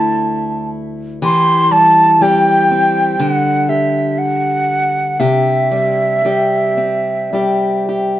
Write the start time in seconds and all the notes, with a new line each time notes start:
Already playing: D2 A3 E4 A5
1.22 E3 G4 C6
1.71 G3 A5
2.21 G3 C4 G4 G5
2.71 C4
3.19 D3 F#5
3.69 G4 E5
4.18 F#5
5.20 C3 G4 E5
5.71 G3
6.25 G3 C4 G4
6.77 C4
7.33 G3 C4 G4
7.89 G4